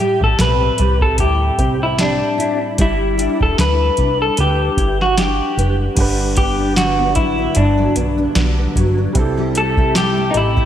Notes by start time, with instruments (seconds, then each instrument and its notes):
Already playing: nylon-string guitar A2 E4, clean electric guitar G4
0.00 nylon-string guitar G3
0.21 analog synth bass A1, clean electric guitar A4, kick
0.39 analog synth bass B1, nylon-string guitar C4, clean electric guitar B4, snare, closed hi-hat
0.78 analog synth bass C2, nylon-string guitar G3, closed hi-hat
1.01 clean electric guitar A4, kick
1.18 analog synth bass D2, nylon-string guitar E4, clean electric guitar G4, kick, closed hi-hat
1.58 analog synth bass C2, nylon-string guitar C4, kick, closed hi-hat
1.83 clean electric guitar E4
1.98 nylon-string guitar G3, clean electric guitar D4, snare, closed hi-hat
2.38 nylon-string guitar E4, closed hi-hat
2.78 analog synth bass G1, nylon-string guitar G3, clean electric guitar E4, kick, closed hi-hat
3.18 nylon-string guitar D4, closed hi-hat
3.40 analog synth bass E1, clean electric guitar A4, kick
3.58 analog synth bass D2, nylon-string guitar E4, clean electric guitar B4, snare, closed hi-hat
3.97 analog synth bass C2, nylon-string guitar D4, kick, closed hi-hat
4.22 clean electric guitar A4
4.37 analog synth bass D2, clean electric guitar G4, nylon-string guitar B4, closed hi-hat
4.77 analog synth bass G1, nylon-string guitar E4, kick, closed hi-hat
5.01 clean electric guitar F#4, snare
5.17 nylon-string guitar D4, clean electric guitar G4, snare, closed hi-hat
5.57 analog synth bass F#1, nylon-string guitar B4, closed hi-hat
5.95 analog synth bass G1, nylon-string guitar G2, upright piano G3 D4 F#5, kick, closed hi-hat, crash
6.00 upright piano B4
6.37 nylon-string guitar B3, clean electric guitar G4, kick, closed hi-hat
6.58 nylon-string guitar D4
6.76 nylon-string guitar D3, clean electric guitar F#4, snare, closed hi-hat
6.98 nylon-string guitar B3
7.15 analog synth bass A1, nylon-string guitar F#3, clean electric guitar E4, kick, closed hi-hat
7.38 nylon-string guitar D4
7.55 analog synth bass G1, nylon-string guitar G2, clean electric guitar D4, closed hi-hat
7.78 nylon-string guitar F#3
7.95 analog synth bass B1, nylon-string guitar B3, closed hi-hat
8.18 nylon-string guitar D4
8.35 analog synth bass B1, nylon-string guitar D3, snare, closed hi-hat
8.57 nylon-string guitar B3
8.75 analog synth bass G1, nylon-string guitar F#3, kick, closed hi-hat
8.98 nylon-string guitar D4
9.13 analog synth bass C2, nylon-string guitar C3, upright piano G3 C4 E4, kick, closed hi-hat
9.18 upright piano A4
9.37 nylon-string guitar G3
9.55 nylon-string guitar A3, clean electric guitar A4, closed hi-hat
9.77 nylon-string guitar E4, kick
9.95 nylon-string guitar G3, clean electric guitar G4, snare, closed hi-hat
10.17 nylon-string guitar A3
10.31 analog synth bass A1, clean electric guitar D#4, closed hi-hat
10.35 nylon-string guitar G3, clean electric guitar E4
10.57 nylon-string guitar E4, kick